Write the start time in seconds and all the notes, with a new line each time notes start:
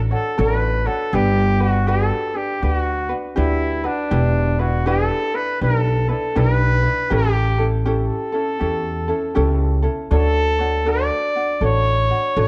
Already playing: A1 D4 F#4 A4
0.11 D4 F#4 A4 C#5
0.38 A1 D4 F#4 A4 A#4 C#5
0.57 B4
0.86 D4 F#4 A4 C#5
1.13 G1 D4 G4 B4
1.60 D4 F#4 B4
1.87 D4 F#4 G4 A4 B4
2.34 D4 G4 B4
2.62 D2 D4 F#4 G4 B4
2.75 F#4
3.09 D4 F#4 B4
3.36 D2 D4 E4 F#4 G4 B4
3.84 D4 F#4 B4
4.11 E1 D4 E4 G4 B4
4.59 D4 E4 F#4 B4
4.86 D4 E4 G4 A4 B4
5.34 D4 E4 B4
5.61 B1 D4 E4 G4 A#4 B4
5.79 A4
6.09 D4 E4 A4 B4
6.35 B1 D4 E4 G4 B4
6.83 D4 E4 B4
7.10 A1 C#4 E4 G4 A4
7.58 C#4 E4 A4
7.85 C#4 E4 G4 A4
8.32 C#4 E4 A4
8.60 E2 C#4 E4 G4 A4
9.08 C#4 E4 A4
9.35 C#2 C#4 E4 G4 A4
9.82 C#4 E4 A4
10.11 D2 D4 F#4 A4 C#5
10.59 D4 F#4 C#5
10.85 D4 F#4 A4 D5
11.36 D4 F#4
11.61 A1 D4 F#4 A4 C#5
12.09 D4 F#4 C#5
12.36 A1 D4 F#4 A4 D5